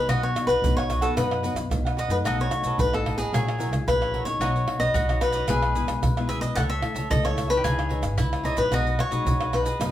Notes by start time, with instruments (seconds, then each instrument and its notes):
Already playing: nylon-string guitar F#3 B3 D#4
0.07 upright bass B1, nylon-string guitar B2, cavaquinho F#4 B4 D#5, mandolin F#4, pandeiro, tamborim, maracas, surdo
0.11 cavaquinho F#5
0.23 cavaquinho B4 C#5 D#5 F#5, pandeiro, maracas
0.35 nylon-string guitar F#3 B3 D#4, muted cavaquinho stroke, pandeiro, tamborim, maracas
0.47 upright bass B1, cavaquinho B4 D#5 F#5, pandeiro, maracas, surdo
0.62 upright bass B1, nylon-string guitar F#2 F#3 B3 D#4, pandeiro, maracas, surdo
0.77 cavaquinho B4 C#5 D#5 F#5, pandeiro, tamborim, maracas
0.89 cavaquinho F#4 B4 D#5 F#5, pandeiro, tamborim, maracas, surdo
1.01 nylon-string guitar F#3 B3 D#4, cavaquinho A4 B4 D#5 F#5, pandeiro, maracas
1.16 upright bass F#2, nylon-string guitar B2, cavaquinho F#4 B4 D#5 F#5, pandeiro, tamborim, maracas, surdo
1.31 cavaquinho B4 D#5 F#5, pandeiro, tamborim, maracas
1.43 nylon-string guitar F#3 B3 D#4, cavaquinho F#4 B4 D#5 F#5, pandeiro, maracas
1.55 upright bass F#2, muted cavaquinho stroke, pandeiro, tamborim, maracas, surdo
1.70 upright bass B1, nylon-string guitar F#2 F#3 B3 D#4, pandeiro, tamborim, maracas, surdo
1.85 cavaquinho B4 D#5 F#5, pandeiro, tamborim, maracas
1.97 cavaquinho F#4 B4 D#5 F#5, pandeiro, maracas, surdo
2.09 upright bass F#2, nylon-string guitar F#3 A3 D#4, cavaquinho B4 D#5 F#5, pandeiro, maracas, surdo
2.13 cavaquinho B4
2.24 upright bass B1, nylon-string guitar B2, cavaquinho D#4 A4 B4 D#5, mandolin F#4, pandeiro, tamborim, maracas, surdo
2.40 cavaquinho A4 B4 C#5 D#5, pandeiro, maracas
2.51 nylon-string guitar F#3 A3 D#4, muted cavaquinho stroke, pandeiro, tamborim, maracas
2.63 upright bass B1, cavaquinho A4 B4 D#5, pandeiro, maracas, surdo
2.78 upright bass A1, nylon-string guitar F#2 F#3 A3 D#4, cavaquinho B4, pandeiro, maracas, surdo
2.93 cavaquinho A4 B4 D#5, pandeiro, tamborim, maracas
3.05 cavaquinho D#4 A4 B4 D#5, pandeiro, tamborim, surdo
3.17 nylon-string guitar F#3 C#4 E4, cavaquinho G#4 A4 B4 D#5, pandeiro, maracas
3.32 upright bass A#1, nylon-string guitar A#2, cavaquinho F#4 A#4 C#5 E5, mandolin G#4, pandeiro, tamborim, maracas, surdo
3.47 cavaquinho A#4 C#5 E5, pandeiro, tamborim, maracas
3.58 nylon-string guitar F#3 C#4 E4, cavaquinho F#4 A#4 C#5 E5, pandeiro, maracas
3.71 upright bass C#2, muted cavaquinho stroke, pandeiro, tamborim, maracas, surdo
3.86 upright bass A#1, nylon-string guitar A#2 F#3 C#4 E4, cavaquinho B4, pandeiro, tamborim, maracas, surdo
4.01 cavaquinho A#4 C#5 E5, pandeiro, tamborim, maracas
4.13 cavaquinho F#4 A#4 C#5 E5, pandeiro, surdo
4.25 upright bass A#1, nylon-string guitar F#3 C#4 D#4, cavaquinho A#4 C#5 E5, pandeiro, maracas, surdo
4.40 upright bass B1, nylon-string guitar B2, cavaquinho D#4 B4 C#5 D#5, mandolin F#4, pandeiro, tamborim, maracas, surdo
4.54 cavaquinho B4 C#5 D#5, pandeiro, maracas
4.66 nylon-string guitar F#3 C#4 D#4, muted cavaquinho stroke, pandeiro, tamborim
4.79 upright bass B1, cavaquinho B4 C#5 D#5, pandeiro, maracas, surdo
4.94 upright bass B1, mandolin F#4, pandeiro, maracas, surdo
5.09 nylon-string guitar F#3 C#4 D#4, cavaquinho B4 C#5 D#5, pandeiro, tamborim, maracas
5.21 cavaquinho D#4 B4 C#5 D#5, pandeiro, tamborim, maracas, surdo
5.33 cavaquinho B4 C#5 D#5, pandeiro, maracas
5.48 upright bass B1, nylon-string guitar B2 G#3 B3 E4, cavaquinho E4 G#4 B4 E5, mandolin B4, pandeiro, tamborim, maracas, surdo
5.62 cavaquinho G#4 B4 E5, pandeiro, tamborim, maracas
5.75 nylon-string guitar G#3 B3 E4, cavaquinho E4 G#4 B4 E5, pandeiro, maracas
5.87 upright bass B1, muted cavaquinho stroke, pandeiro, tamborim, maracas, surdo
6.02 upright bass B1, nylon-string guitar B2, pandeiro, tamborim, maracas, surdo
6.17 nylon-string guitar G#3 B3 E4, cavaquinho G#4 B4 E5, pandeiro, tamborim, maracas
6.27 cavaquinho E4 G#4 B4 E5, pandeiro, maracas, surdo
6.41 upright bass B1, cavaquinho G#4 B4 D#5 E5, pandeiro, maracas, surdo
6.55 upright bass C#2, nylon-string guitar C#3 E3 A3 E4, cavaquinho E4 A4 C#5 E5 F#5, mandolin A4, pandeiro, tamborim, maracas, surdo
6.70 cavaquinho A4 C#5 E5, pandeiro, maracas
6.82 nylon-string guitar E3 A3 E4, muted cavaquinho stroke, pandeiro, tamborim
6.94 upright bass C#2, cavaquinho A4 C#5 E5, pandeiro, maracas, surdo
7.10 upright bass C#2, nylon-string guitar C#3 E3 A3 E4, mandolin A4, cavaquinho D#5, pandeiro, maracas, surdo
7.23 cavaquinho A4 C#5 E5, pandeiro, tamborim, maracas
7.35 cavaquinho E4 A4 C#5 E5, pandeiro, tamborim, maracas, surdo
7.47 nylon-string guitar E3 G#3 D#4, cavaquinho A4 B4 C#5 E5, pandeiro, maracas
7.57 mandolin G4
7.64 upright bass C#2, nylon-string guitar C#3, cavaquinho D#4 G#4 C#5 E5, mandolin G#4, pandeiro, tamborim, maracas, surdo
7.78 cavaquinho G#4 C#5 E5, pandeiro, tamborim, maracas
7.89 nylon-string guitar E3 G#3 D#4, cavaquinho D#4 G#4 C#5 E5, pandeiro
8.03 upright bass G#1, muted cavaquinho stroke, pandeiro, tamborim, maracas, surdo
8.18 upright bass C#2, nylon-string guitar G#2 E3 G#3, mandolin E4, pandeiro, tamborim, maracas, surdo
8.32 cavaquinho G#4 C#5 E5, pandeiro, tamborim, maracas
8.43 cavaquinho D#4 G#4 C#5 D#5 E5, pandeiro, maracas, surdo
8.56 upright bass A#1, nylon-string guitar F#3 G#3 D#4, cavaquinho G#4 B4 C#5 E5, pandeiro, maracas, surdo
8.71 upright bass B1, nylon-string guitar B2, cavaquinho D#4 G#4 B4 D#5, mandolin F#4, pandeiro, tamborim, maracas, surdo
8.86 cavaquinho B4 D#5, pandeiro, maracas
8.99 cavaquinho C#5, muted cavaquinho stroke, pandeiro, tamborim
9.11 upright bass B1, nylon-string guitar F#3 G#3 D#4, cavaquinho G#4 B4 D#5, pandeiro, maracas, surdo
9.25 upright bass B1, nylon-string guitar F#2, pandeiro, maracas, surdo
9.40 cavaquinho G#4 B4 D#5, pandeiro, tamborim, maracas
9.53 nylon-string guitar F#3 G#3 D#4, cavaquinho D#4 G#4 B4 D#5, pandeiro, tamborim, maracas, surdo
9.65 cavaquinho G#4 B4 D#5, pandeiro, maracas
9.80 upright bass F#2, nylon-string guitar B2 F#3 G#3 D#4, cavaquinho D#4 G#4 B4 D#5, pandeiro, tamborim, maracas, surdo